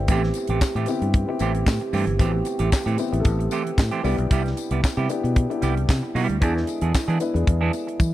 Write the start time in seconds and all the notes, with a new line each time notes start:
Already playing: B3 G4 B4 C5 E5
0.08 A1 C3 E3 A3 B3 C4 E4 G4, kick, closed hi-hat, tambourine
0.24 muted clean electric guitar stroke, snare
0.34 muted clean electric guitar stroke, closed hi-hat, tambourine
0.47 A1 E3 A3 C4 G4, closed hi-hat
0.61 kick, snare, clap, tambourine
0.75 A2 E3 A3 C4 G4, closed hi-hat
0.86 B3 C4 E4 G4, closed hi-hat, tambourine
0.91 muted clean electric guitar stroke
1.02 G2, muted clean electric guitar stroke, closed hi-hat
1.14 muted clean electric guitar stroke, kick, closed hi-hat
1.27 B3 C4 E4 G4, muted clean electric guitar stroke
1.39 A1 E3 A3 C4 G4, closed hi-hat, tambourine
1.55 muted clean electric guitar stroke, closed hi-hat
1.66 A2, muted clean electric guitar stroke, kick, snare, clap, tambourine
1.80 muted clean electric guitar stroke, closed hi-hat
1.93 G2 E3 A3 C4 G4, open hi-hat, tambourine
2.07 G1, muted clean electric guitar stroke, closed hi-hat
2.19 A1 E3 A3 B3 C4 E4 F#4 G4, kick, closed hi-hat, tambourine
2.26 G4
2.34 muted clean electric guitar stroke
2.45 muted clean electric guitar stroke, closed hi-hat, tambourine
2.59 A1 E3 A3 C4 G4, closed hi-hat
2.72 muted clean electric guitar stroke, kick, snare, clap, tambourine
2.86 A2 E3 A3 C4 G4, closed hi-hat
2.98 B3 C4 E4 G4, muted clean electric guitar stroke, closed hi-hat, tambourine
3.12 A1 B3 C4 E4 G4, muted clean electric guitar stroke, closed hi-hat
3.19 A4
3.25 A1, muted clean electric guitar stroke, kick, closed hi-hat, tambourine
3.39 muted clean electric guitar stroke, closed hi-hat
3.51 E3 A3 C4 G4, closed hi-hat, tambourine
3.65 muted clean electric guitar stroke, closed hi-hat
3.78 A2, muted clean electric guitar stroke, kick, snare, clap, tambourine
3.91 E3 A3 C4 G4, closed hi-hat
4.04 C2 G3 B3 D4 E4 G4, open hi-hat, tambourine
4.18 B1, muted clean electric guitar stroke, closed hi-hat
4.31 C2 G3 B3 E4 G4, kick, closed hi-hat, tambourine
4.44 muted clean electric guitar stroke, snare, closed hi-hat
4.57 muted clean electric guitar stroke, closed hi-hat, tambourine
4.71 C2 G3 B3 E4 G4, closed hi-hat
4.83 muted clean electric guitar stroke, kick, snare, clap, tambourine
4.97 C3 G3 B3 E4 G4
5.09 B3 D4 E4 G4, muted clean electric guitar stroke, closed hi-hat, tambourine
5.24 B2, muted clean electric guitar stroke, closed hi-hat
5.36 muted clean electric guitar stroke, kick, closed hi-hat
5.49 B3 D4 E4 G4, muted clean electric guitar stroke, closed hi-hat
5.62 C2 G3 B3 E4 G4, closed hi-hat, tambourine
5.77 muted clean electric guitar stroke, closed hi-hat
5.89 C3, kick, snare, clap, tambourine
6.03 muted clean electric guitar stroke
6.15 B2 G3 B3 E4 G4, open hi-hat, tambourine
6.29 D2, muted clean electric guitar stroke, closed hi-hat
6.40 E2 D3 E3 G#3 B3 D4 E4 G#4, kick, closed hi-hat, tambourine
6.56 muted clean electric guitar stroke, snare
6.67 muted clean electric guitar stroke, closed hi-hat, tambourine
6.81 E2 E3 B3 D4 G#4, closed hi-hat
6.94 kick, snare, clap, tambourine
7.08 E3 B3 D4 G#4, closed hi-hat
7.20 B3 D4 E4 B4, closed hi-hat, tambourine
7.34 E2 B3 D4 E4 G#4, muted clean electric guitar stroke, closed hi-hat
7.47 E2, muted clean electric guitar stroke, kick, closed hi-hat
7.61 E3 B3 D4 G#4
7.73 muted clean electric guitar stroke, closed hi-hat, tambourine
7.87 muted clean electric guitar stroke, closed hi-hat
8.00 E3, kick, high tom, tambourine